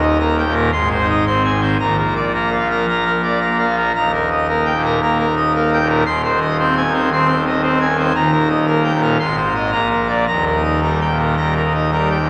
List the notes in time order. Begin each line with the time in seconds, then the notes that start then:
Already playing: D#1 D#2 D#4
0.02 D#5
0.20 A#3 A#4
0.38 G5
0.47 A#2
0.55 A#4
0.73 G#1 G#2 C6
0.91 C5
1.01 D#4
1.09 D#5
1.27 C4 C5
1.45 G#5
1.53 D#3
1.62 C5
1.80 A#1 A#2 A#5
1.98 A#4
2.16 D5
2.34 A#3 A#4
2.52 F5
2.60 F3
2.70 A#4
2.88 A#3 A#5
3.05 A#4
3.23 D5
3.41 A#3 A#4
3.59 F5
3.68 F3
3.77 A#4
3.96 D#1 D#2 A#5
4.13 A#4
4.31 D#5
4.48 A#3 A#4
4.65 G5
4.76 A#2
4.85 A#4
5.02 A#3 A#5
5.19 A#4
5.37 D#5
5.55 A#3 A#4
5.73 G5
5.82 A#2
5.89 A#4
6.06 D#1 D#2 C6
6.24 C5
6.41 D#5
6.59 C4 C5
6.77 G#5
6.86 D#3
6.94 C5
7.12 C4 C6
7.29 C5
7.47 D#5
7.63 C4 C5
7.81 G#5
7.89 D#3
7.98 C5
8.15 D#1 D#2 A#5
8.32 A#4
8.49 D#5
8.67 A#3 A#4
8.84 G5
8.94 A#2
9.02 A#4
9.19 G#1 G#2 C6
9.37 C5
9.55 D#5
9.72 A#1 A#2 A#5
9.90 A#4
10.08 D5
10.28 D#1 D#2 A#5
10.46 A#4
10.55 D#4
10.63 D#5
10.82 G3 A#4
11.01 G5
11.09 A#2
11.18 A#4
11.37 G3 A#5
11.56 A#4
11.65 D#4
11.74 D#5
11.92 G3 A#4
12.11 G5
12.20 A#2